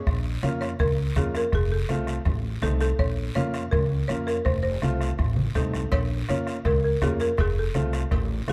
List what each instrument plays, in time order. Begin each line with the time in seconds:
Already playing: marimba C#5
0.07 upright bass A#1, bombo low, bombo rim, high conga, long guiro
0.43 upright bass F2, upright piano A#3 C#4 F4, marimba C#5, bombo rim, high conga, short guiro
0.61 marimba C#5, bombo rim, short guiro
0.79 upright bass C#2, marimba A#4, bombo low, bombo rim, high conga, low conga, long guiro
1.16 upright bass F2, upright piano A#3 C#4 F4, marimba G#4, bombo low, bombo rim, high conga, short guiro
1.35 marimba A#4, bombo rim, short guiro
1.52 upright bass F1, marimba G#4, bombo low, bombo rim, high conga, long guiro
1.72 marimba A4
1.89 upright bass C2, upright piano A3 C4 F4, bombo rim, high conga, short guiro
2.07 bombo rim, short guiro
2.25 upright bass A1, bombo low, bombo rim, high conga, low conga, long guiro
2.62 upright bass C2, upright piano A3 C4 D#4, marimba A4, bombo rim, high conga, short guiro
2.80 marimba A4, bombo rim, short guiro
2.99 upright bass A#1, marimba C#5, bombo low, bombo rim, high conga, long guiro
3.35 upright bass F2, upright piano A#3 C#4 F4, marimba C#5, bombo rim, high conga, short guiro
3.54 bombo rim, short guiro
3.71 upright bass C#2, marimba A#4, bombo low, bombo rim, high conga, low conga, long guiro
4.08 upright bass F2, upright piano A#3 C#4 F4, marimba C#5, bombo rim, high conga, short guiro
4.27 marimba A#4, bombo rim, short guiro
4.45 upright bass F1, marimba C5, bombo low, bombo rim, high conga, low conga, long guiro
4.63 marimba C5
4.82 upright bass C2, upright piano A3 C4 F4, bombo rim, high conga, short guiro
5.01 bombo rim, short guiro
5.18 upright bass A1, bombo low, bombo rim, high conga, low conga, long guiro
5.36 high conga
5.55 upright bass C2, upright piano A3 C4 D#4, marimba A4, bombo low, bombo rim, low conga, short guiro
5.74 bombo rim, low conga, short guiro
5.92 upright bass A#1, marimba C#5, bombo low, bombo rim, cowbell, high conga, long guiro
6.28 upright bass F2, upright piano A#3 C#4 F4, marimba C#5, bombo rim, high conga, short guiro
6.47 bombo rim, short guiro
6.65 upright bass C#2, marimba A#4, bombo low, bombo rim, cowbell, high conga, low conga, long guiro
6.84 marimba A#4
7.02 upright bass F2, upright piano A#3 C#4 F4, marimba G#4, bombo low, bombo rim, high conga, low timbale, short guiro
7.20 marimba A#4, bombo rim, short guiro
7.38 upright bass F1, marimba G#4, bombo low, bombo rim, cowbell, high conga, long guiro
7.59 marimba A4
7.74 upright bass C2, upright piano A3 C4 F4, bombo rim, high conga, short guiro
7.93 bombo rim, short guiro
8.11 upright bass A1, bombo low, bombo rim, cowbell, high conga, low conga, long guiro
8.48 upright bass C2, upright piano A3 C4 F4, marimba G#4, bombo rim, high conga, short guiro